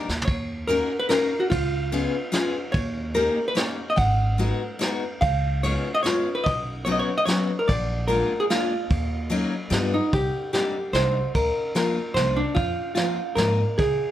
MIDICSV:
0, 0, Header, 1, 5, 480
1, 0, Start_track
1, 0, Key_signature, -6, "minor"
1, 0, Tempo, 412371
1, 317, Time_signature, 3, 2, 24, 8
1, 7992, Tempo, 406780
1, 11842, Key_signature, -3, "minor"
1, 16542, End_track
2, 0, Start_track
2, 0, Title_t, "Hollow-body jazz guitar"
2, 0, Program_c, 0, 26
2, 290, Note_on_c, 0, 73, 79
2, 781, Note_off_c, 0, 73, 0
2, 785, Note_on_c, 0, 70, 82
2, 1153, Note_off_c, 0, 70, 0
2, 1158, Note_on_c, 0, 71, 101
2, 1268, Note_off_c, 0, 71, 0
2, 1272, Note_on_c, 0, 70, 83
2, 1628, Note_on_c, 0, 66, 73
2, 1659, Note_off_c, 0, 70, 0
2, 1741, Note_off_c, 0, 66, 0
2, 1746, Note_on_c, 0, 65, 77
2, 2922, Note_off_c, 0, 65, 0
2, 3166, Note_on_c, 0, 73, 91
2, 3661, Note_off_c, 0, 73, 0
2, 3665, Note_on_c, 0, 70, 90
2, 4044, Note_off_c, 0, 70, 0
2, 4049, Note_on_c, 0, 71, 92
2, 4147, Note_off_c, 0, 71, 0
2, 4152, Note_on_c, 0, 73, 76
2, 4494, Note_off_c, 0, 73, 0
2, 4537, Note_on_c, 0, 75, 84
2, 4612, Note_off_c, 0, 75, 0
2, 4612, Note_on_c, 0, 78, 99
2, 5846, Note_off_c, 0, 78, 0
2, 6064, Note_on_c, 0, 77, 90
2, 6552, Note_off_c, 0, 77, 0
2, 6557, Note_on_c, 0, 73, 86
2, 6916, Note_off_c, 0, 73, 0
2, 6920, Note_on_c, 0, 75, 104
2, 7011, Note_off_c, 0, 75, 0
2, 7015, Note_on_c, 0, 73, 78
2, 7390, Note_on_c, 0, 71, 86
2, 7409, Note_off_c, 0, 73, 0
2, 7492, Note_on_c, 0, 75, 82
2, 7510, Note_off_c, 0, 71, 0
2, 7966, Note_off_c, 0, 75, 0
2, 7970, Note_on_c, 0, 73, 75
2, 8047, Note_off_c, 0, 73, 0
2, 8051, Note_on_c, 0, 75, 63
2, 8138, Note_off_c, 0, 75, 0
2, 8143, Note_on_c, 0, 73, 77
2, 8353, Note_off_c, 0, 73, 0
2, 8358, Note_on_c, 0, 75, 105
2, 8446, Note_off_c, 0, 75, 0
2, 8451, Note_on_c, 0, 73, 85
2, 8846, Note_on_c, 0, 70, 68
2, 8849, Note_off_c, 0, 73, 0
2, 8948, Note_on_c, 0, 74, 72
2, 8960, Note_off_c, 0, 70, 0
2, 9414, Note_off_c, 0, 74, 0
2, 9419, Note_on_c, 0, 70, 73
2, 9802, Note_on_c, 0, 68, 92
2, 9811, Note_off_c, 0, 70, 0
2, 9851, Note_off_c, 0, 68, 0
2, 9924, Note_on_c, 0, 65, 77
2, 11617, Note_on_c, 0, 63, 71
2, 11629, Note_off_c, 0, 65, 0
2, 11846, Note_off_c, 0, 63, 0
2, 11852, Note_on_c, 0, 67, 63
2, 12305, Note_off_c, 0, 67, 0
2, 12319, Note_on_c, 0, 67, 69
2, 12791, Note_on_c, 0, 72, 79
2, 12816, Note_off_c, 0, 67, 0
2, 13279, Note_off_c, 0, 72, 0
2, 13284, Note_on_c, 0, 70, 84
2, 13728, Note_off_c, 0, 70, 0
2, 13765, Note_on_c, 0, 70, 59
2, 14214, Note_off_c, 0, 70, 0
2, 14219, Note_on_c, 0, 72, 84
2, 14480, Note_on_c, 0, 62, 73
2, 14498, Note_off_c, 0, 72, 0
2, 14695, Note_on_c, 0, 65, 80
2, 14712, Note_off_c, 0, 62, 0
2, 15155, Note_off_c, 0, 65, 0
2, 15170, Note_on_c, 0, 65, 69
2, 15649, Note_on_c, 0, 70, 77
2, 15675, Note_off_c, 0, 65, 0
2, 16148, Note_on_c, 0, 68, 68
2, 16155, Note_off_c, 0, 70, 0
2, 16542, Note_off_c, 0, 68, 0
2, 16542, End_track
3, 0, Start_track
3, 0, Title_t, "Steel-string acoustic guitar"
3, 0, Program_c, 1, 25
3, 797, Note_on_c, 1, 61, 65
3, 806, Note_on_c, 1, 63, 41
3, 808, Note_on_c, 1, 66, 54
3, 819, Note_on_c, 1, 70, 75
3, 1063, Note_off_c, 1, 61, 0
3, 1064, Note_off_c, 1, 63, 0
3, 1068, Note_off_c, 1, 66, 0
3, 1073, Note_off_c, 1, 70, 0
3, 1268, Note_on_c, 1, 61, 60
3, 1278, Note_on_c, 1, 63, 48
3, 1286, Note_on_c, 1, 66, 50
3, 1291, Note_on_c, 1, 70, 64
3, 1538, Note_off_c, 1, 61, 0
3, 1540, Note_off_c, 1, 63, 0
3, 1546, Note_off_c, 1, 66, 0
3, 1549, Note_off_c, 1, 70, 0
3, 2237, Note_on_c, 1, 59, 66
3, 2240, Note_on_c, 1, 61, 60
3, 2250, Note_on_c, 1, 65, 51
3, 2255, Note_on_c, 1, 68, 68
3, 2499, Note_off_c, 1, 59, 0
3, 2501, Note_off_c, 1, 61, 0
3, 2502, Note_off_c, 1, 65, 0
3, 2508, Note_off_c, 1, 68, 0
3, 2699, Note_on_c, 1, 59, 78
3, 2704, Note_on_c, 1, 61, 64
3, 2711, Note_on_c, 1, 65, 67
3, 2717, Note_on_c, 1, 68, 81
3, 2968, Note_off_c, 1, 59, 0
3, 2971, Note_off_c, 1, 61, 0
3, 2974, Note_off_c, 1, 65, 0
3, 2977, Note_off_c, 1, 68, 0
3, 3661, Note_on_c, 1, 58, 66
3, 3667, Note_on_c, 1, 61, 57
3, 3674, Note_on_c, 1, 63, 61
3, 3683, Note_on_c, 1, 67, 77
3, 3927, Note_off_c, 1, 58, 0
3, 3930, Note_off_c, 1, 61, 0
3, 3933, Note_off_c, 1, 63, 0
3, 3938, Note_off_c, 1, 67, 0
3, 4131, Note_on_c, 1, 58, 61
3, 4137, Note_on_c, 1, 61, 56
3, 4146, Note_on_c, 1, 63, 46
3, 4149, Note_on_c, 1, 67, 65
3, 4402, Note_off_c, 1, 58, 0
3, 4406, Note_off_c, 1, 61, 0
3, 4406, Note_off_c, 1, 63, 0
3, 4410, Note_off_c, 1, 67, 0
3, 5100, Note_on_c, 1, 56, 55
3, 5105, Note_on_c, 1, 59, 50
3, 5114, Note_on_c, 1, 63, 61
3, 5118, Note_on_c, 1, 66, 65
3, 5368, Note_off_c, 1, 56, 0
3, 5368, Note_off_c, 1, 59, 0
3, 5374, Note_off_c, 1, 63, 0
3, 5376, Note_off_c, 1, 66, 0
3, 5577, Note_on_c, 1, 56, 70
3, 5594, Note_on_c, 1, 59, 51
3, 5594, Note_on_c, 1, 63, 61
3, 5599, Note_on_c, 1, 66, 83
3, 5847, Note_off_c, 1, 56, 0
3, 5854, Note_off_c, 1, 59, 0
3, 5856, Note_off_c, 1, 63, 0
3, 5859, Note_off_c, 1, 66, 0
3, 6560, Note_on_c, 1, 56, 65
3, 6570, Note_on_c, 1, 59, 46
3, 6570, Note_on_c, 1, 61, 61
3, 6584, Note_on_c, 1, 65, 66
3, 6822, Note_off_c, 1, 56, 0
3, 6826, Note_off_c, 1, 59, 0
3, 6828, Note_off_c, 1, 61, 0
3, 6834, Note_off_c, 1, 65, 0
3, 7029, Note_on_c, 1, 56, 57
3, 7039, Note_on_c, 1, 61, 55
3, 7045, Note_on_c, 1, 59, 42
3, 7053, Note_on_c, 1, 65, 74
3, 7296, Note_off_c, 1, 56, 0
3, 7302, Note_off_c, 1, 59, 0
3, 7303, Note_off_c, 1, 61, 0
3, 7308, Note_off_c, 1, 65, 0
3, 7984, Note_on_c, 1, 59, 64
3, 7989, Note_on_c, 1, 54, 67
3, 7995, Note_on_c, 1, 61, 57
3, 8004, Note_on_c, 1, 66, 77
3, 8255, Note_off_c, 1, 59, 0
3, 8257, Note_off_c, 1, 54, 0
3, 8260, Note_off_c, 1, 61, 0
3, 8264, Note_off_c, 1, 66, 0
3, 8463, Note_on_c, 1, 54, 65
3, 8474, Note_on_c, 1, 61, 55
3, 8477, Note_on_c, 1, 59, 51
3, 8480, Note_on_c, 1, 66, 61
3, 8735, Note_off_c, 1, 54, 0
3, 8740, Note_off_c, 1, 59, 0
3, 8742, Note_off_c, 1, 61, 0
3, 8744, Note_off_c, 1, 66, 0
3, 9426, Note_on_c, 1, 56, 63
3, 9431, Note_on_c, 1, 58, 57
3, 9439, Note_on_c, 1, 62, 56
3, 9446, Note_on_c, 1, 65, 76
3, 9695, Note_off_c, 1, 56, 0
3, 9698, Note_off_c, 1, 58, 0
3, 9702, Note_off_c, 1, 62, 0
3, 9705, Note_off_c, 1, 65, 0
3, 9922, Note_on_c, 1, 56, 64
3, 9928, Note_on_c, 1, 58, 60
3, 9932, Note_on_c, 1, 62, 46
3, 9939, Note_on_c, 1, 65, 68
3, 10181, Note_off_c, 1, 56, 0
3, 10184, Note_off_c, 1, 62, 0
3, 10185, Note_off_c, 1, 58, 0
3, 10189, Note_off_c, 1, 65, 0
3, 10861, Note_on_c, 1, 54, 71
3, 10868, Note_on_c, 1, 58, 58
3, 10877, Note_on_c, 1, 61, 74
3, 10883, Note_on_c, 1, 63, 83
3, 11134, Note_off_c, 1, 54, 0
3, 11134, Note_off_c, 1, 58, 0
3, 11141, Note_off_c, 1, 61, 0
3, 11144, Note_off_c, 1, 63, 0
3, 11338, Note_on_c, 1, 55, 70
3, 11347, Note_on_c, 1, 59, 51
3, 11350, Note_on_c, 1, 62, 62
3, 11366, Note_on_c, 1, 65, 67
3, 11615, Note_off_c, 1, 55, 0
3, 11617, Note_off_c, 1, 59, 0
3, 11623, Note_off_c, 1, 62, 0
3, 11625, Note_off_c, 1, 65, 0
3, 12315, Note_on_c, 1, 55, 55
3, 12323, Note_on_c, 1, 60, 46
3, 12327, Note_on_c, 1, 62, 49
3, 12337, Note_on_c, 1, 63, 55
3, 12586, Note_off_c, 1, 55, 0
3, 12587, Note_off_c, 1, 60, 0
3, 12591, Note_off_c, 1, 62, 0
3, 12593, Note_off_c, 1, 63, 0
3, 12792, Note_on_c, 1, 55, 50
3, 12802, Note_on_c, 1, 60, 52
3, 12808, Note_on_c, 1, 62, 48
3, 12813, Note_on_c, 1, 63, 60
3, 13063, Note_off_c, 1, 55, 0
3, 13064, Note_off_c, 1, 60, 0
3, 13070, Note_off_c, 1, 62, 0
3, 13072, Note_off_c, 1, 63, 0
3, 13754, Note_on_c, 1, 53, 60
3, 13761, Note_on_c, 1, 58, 56
3, 13769, Note_on_c, 1, 65, 73
3, 13772, Note_on_c, 1, 62, 42
3, 14020, Note_off_c, 1, 53, 0
3, 14024, Note_off_c, 1, 58, 0
3, 14026, Note_off_c, 1, 62, 0
3, 14027, Note_off_c, 1, 65, 0
3, 14246, Note_on_c, 1, 53, 50
3, 14255, Note_on_c, 1, 58, 48
3, 14256, Note_on_c, 1, 65, 63
3, 14265, Note_on_c, 1, 62, 48
3, 14506, Note_off_c, 1, 53, 0
3, 14507, Note_off_c, 1, 58, 0
3, 14508, Note_off_c, 1, 62, 0
3, 14509, Note_off_c, 1, 65, 0
3, 15175, Note_on_c, 1, 53, 63
3, 15180, Note_on_c, 1, 58, 53
3, 15186, Note_on_c, 1, 60, 56
3, 15195, Note_on_c, 1, 65, 58
3, 15447, Note_off_c, 1, 53, 0
3, 15447, Note_off_c, 1, 58, 0
3, 15453, Note_off_c, 1, 60, 0
3, 15455, Note_off_c, 1, 65, 0
3, 15664, Note_on_c, 1, 53, 55
3, 15672, Note_on_c, 1, 58, 52
3, 15679, Note_on_c, 1, 60, 54
3, 15692, Note_on_c, 1, 65, 63
3, 15932, Note_off_c, 1, 53, 0
3, 15936, Note_off_c, 1, 58, 0
3, 15939, Note_off_c, 1, 60, 0
3, 15946, Note_off_c, 1, 65, 0
3, 16542, End_track
4, 0, Start_track
4, 0, Title_t, "Upright bass"
4, 0, Program_c, 2, 32
4, 100, Note_on_c, 2, 39, 70
4, 296, Note_off_c, 2, 39, 0
4, 318, Note_on_c, 2, 39, 85
4, 943, Note_off_c, 2, 39, 0
4, 1765, Note_on_c, 2, 37, 77
4, 2383, Note_off_c, 2, 37, 0
4, 3191, Note_on_c, 2, 39, 92
4, 3812, Note_off_c, 2, 39, 0
4, 4620, Note_on_c, 2, 32, 94
4, 5247, Note_off_c, 2, 32, 0
4, 6073, Note_on_c, 2, 37, 86
4, 6699, Note_off_c, 2, 37, 0
4, 7521, Note_on_c, 2, 35, 76
4, 8142, Note_off_c, 2, 35, 0
4, 8963, Note_on_c, 2, 34, 94
4, 9584, Note_off_c, 2, 34, 0
4, 10394, Note_on_c, 2, 39, 87
4, 11021, Note_off_c, 2, 39, 0
4, 11347, Note_on_c, 2, 43, 93
4, 11665, Note_off_c, 2, 43, 0
4, 11842, Note_on_c, 2, 36, 69
4, 12016, Note_off_c, 2, 36, 0
4, 12786, Note_on_c, 2, 36, 82
4, 13103, Note_off_c, 2, 36, 0
4, 13278, Note_on_c, 2, 38, 76
4, 13451, Note_off_c, 2, 38, 0
4, 14221, Note_on_c, 2, 36, 84
4, 14536, Note_off_c, 2, 36, 0
4, 14709, Note_on_c, 2, 41, 80
4, 14882, Note_off_c, 2, 41, 0
4, 15661, Note_on_c, 2, 44, 93
4, 15976, Note_off_c, 2, 44, 0
4, 16157, Note_on_c, 2, 37, 67
4, 16327, Note_off_c, 2, 37, 0
4, 16542, End_track
5, 0, Start_track
5, 0, Title_t, "Drums"
5, 106, Note_on_c, 9, 38, 37
5, 222, Note_off_c, 9, 38, 0
5, 253, Note_on_c, 9, 43, 58
5, 322, Note_on_c, 9, 36, 81
5, 323, Note_on_c, 9, 51, 42
5, 369, Note_off_c, 9, 43, 0
5, 439, Note_off_c, 9, 36, 0
5, 439, Note_off_c, 9, 51, 0
5, 804, Note_on_c, 9, 51, 46
5, 921, Note_off_c, 9, 51, 0
5, 1278, Note_on_c, 9, 38, 52
5, 1278, Note_on_c, 9, 51, 49
5, 1394, Note_off_c, 9, 38, 0
5, 1394, Note_off_c, 9, 51, 0
5, 1762, Note_on_c, 9, 51, 56
5, 1765, Note_on_c, 9, 36, 78
5, 1878, Note_off_c, 9, 51, 0
5, 1881, Note_off_c, 9, 36, 0
5, 2243, Note_on_c, 9, 51, 46
5, 2359, Note_off_c, 9, 51, 0
5, 2716, Note_on_c, 9, 38, 60
5, 2716, Note_on_c, 9, 51, 50
5, 2833, Note_off_c, 9, 38, 0
5, 2833, Note_off_c, 9, 51, 0
5, 3191, Note_on_c, 9, 51, 46
5, 3192, Note_on_c, 9, 36, 88
5, 3308, Note_off_c, 9, 36, 0
5, 3308, Note_off_c, 9, 51, 0
5, 3675, Note_on_c, 9, 51, 41
5, 3791, Note_off_c, 9, 51, 0
5, 4150, Note_on_c, 9, 38, 67
5, 4150, Note_on_c, 9, 51, 42
5, 4267, Note_off_c, 9, 38, 0
5, 4267, Note_off_c, 9, 51, 0
5, 4629, Note_on_c, 9, 36, 89
5, 4629, Note_on_c, 9, 51, 50
5, 4745, Note_off_c, 9, 36, 0
5, 4746, Note_off_c, 9, 51, 0
5, 5114, Note_on_c, 9, 51, 44
5, 5230, Note_off_c, 9, 51, 0
5, 5597, Note_on_c, 9, 38, 58
5, 5597, Note_on_c, 9, 51, 47
5, 5713, Note_off_c, 9, 38, 0
5, 5713, Note_off_c, 9, 51, 0
5, 6076, Note_on_c, 9, 36, 81
5, 6079, Note_on_c, 9, 51, 47
5, 6192, Note_off_c, 9, 36, 0
5, 6195, Note_off_c, 9, 51, 0
5, 6564, Note_on_c, 9, 51, 52
5, 6680, Note_off_c, 9, 51, 0
5, 7049, Note_on_c, 9, 38, 60
5, 7049, Note_on_c, 9, 51, 46
5, 7165, Note_off_c, 9, 38, 0
5, 7165, Note_off_c, 9, 51, 0
5, 7523, Note_on_c, 9, 36, 83
5, 7524, Note_on_c, 9, 51, 47
5, 7640, Note_off_c, 9, 36, 0
5, 7640, Note_off_c, 9, 51, 0
5, 8009, Note_on_c, 9, 51, 44
5, 8127, Note_off_c, 9, 51, 0
5, 8483, Note_on_c, 9, 38, 68
5, 8483, Note_on_c, 9, 51, 45
5, 8601, Note_off_c, 9, 38, 0
5, 8601, Note_off_c, 9, 51, 0
5, 8964, Note_on_c, 9, 36, 85
5, 8965, Note_on_c, 9, 51, 53
5, 9082, Note_off_c, 9, 36, 0
5, 9083, Note_off_c, 9, 51, 0
5, 9445, Note_on_c, 9, 51, 47
5, 9563, Note_off_c, 9, 51, 0
5, 9928, Note_on_c, 9, 38, 59
5, 9928, Note_on_c, 9, 51, 49
5, 10046, Note_off_c, 9, 38, 0
5, 10046, Note_off_c, 9, 51, 0
5, 10399, Note_on_c, 9, 51, 51
5, 10400, Note_on_c, 9, 36, 92
5, 10517, Note_off_c, 9, 51, 0
5, 10518, Note_off_c, 9, 36, 0
5, 10878, Note_on_c, 9, 51, 49
5, 10996, Note_off_c, 9, 51, 0
5, 11360, Note_on_c, 9, 38, 60
5, 11360, Note_on_c, 9, 51, 47
5, 11478, Note_off_c, 9, 38, 0
5, 11478, Note_off_c, 9, 51, 0
5, 11842, Note_on_c, 9, 51, 46
5, 11845, Note_on_c, 9, 36, 85
5, 11960, Note_off_c, 9, 51, 0
5, 11963, Note_off_c, 9, 36, 0
5, 12326, Note_on_c, 9, 38, 54
5, 12326, Note_on_c, 9, 51, 39
5, 12444, Note_off_c, 9, 38, 0
5, 12444, Note_off_c, 9, 51, 0
5, 12803, Note_on_c, 9, 38, 64
5, 12803, Note_on_c, 9, 51, 40
5, 12921, Note_off_c, 9, 38, 0
5, 12921, Note_off_c, 9, 51, 0
5, 13279, Note_on_c, 9, 51, 51
5, 13283, Note_on_c, 9, 36, 81
5, 13397, Note_off_c, 9, 51, 0
5, 13401, Note_off_c, 9, 36, 0
5, 13763, Note_on_c, 9, 38, 60
5, 13763, Note_on_c, 9, 51, 48
5, 13881, Note_off_c, 9, 38, 0
5, 13881, Note_off_c, 9, 51, 0
5, 14240, Note_on_c, 9, 38, 62
5, 14240, Note_on_c, 9, 51, 46
5, 14358, Note_off_c, 9, 38, 0
5, 14358, Note_off_c, 9, 51, 0
5, 14717, Note_on_c, 9, 36, 89
5, 14718, Note_on_c, 9, 51, 44
5, 14835, Note_off_c, 9, 36, 0
5, 14836, Note_off_c, 9, 51, 0
5, 15192, Note_on_c, 9, 38, 57
5, 15192, Note_on_c, 9, 51, 43
5, 15310, Note_off_c, 9, 38, 0
5, 15310, Note_off_c, 9, 51, 0
5, 15678, Note_on_c, 9, 38, 63
5, 15678, Note_on_c, 9, 51, 42
5, 15796, Note_off_c, 9, 38, 0
5, 15796, Note_off_c, 9, 51, 0
5, 16160, Note_on_c, 9, 36, 91
5, 16160, Note_on_c, 9, 51, 43
5, 16278, Note_off_c, 9, 36, 0
5, 16278, Note_off_c, 9, 51, 0
5, 16542, End_track
0, 0, End_of_file